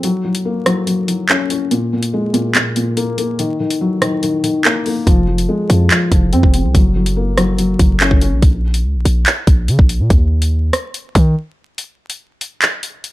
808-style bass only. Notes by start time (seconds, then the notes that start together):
5.07 F1
5.70 F2
6.12 F1
6.33 F2
6.43 F1
6.64 C2
6.75 F#1
7.79 F#1
8.11 F#1
8.32 A#1
8.42 A#1
8.84 C#2
8.95 A#1
9.05 A#1
9.47 A#1
9.68 C#3
9.79 A#1
10.00 A#2
10.10 D#2
11.15 D#3